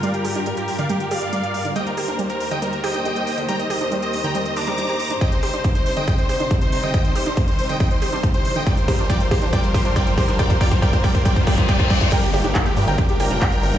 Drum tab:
CC |----------------|----------------|----------------|----------------|
HH |xxoxxxoxxxoxxxox|xxoxxxoxxxoxxxox|xxoxxxoxxxoxxxox|xxoxxxoxxxoxxxox|
CP |----------------|----------------|----------------|----------------|
BD |----------------|----------------|----------------|o---o---o---o---|

CC |----------------|----------------|----------------|x---------------|
HH |xxoxxxoxxxoxxxox|xxoxxxoxxxoxxxox|xxoxxxoxxxoxxxox|xxoxxxoxxxoxxxox|
CP |----------------|----------------|----------------|----x-------x---|
BD |o---o---o---o---|o-o-o-o-o-o-o-o-|oooooooooooooooo|o---o---o---o---|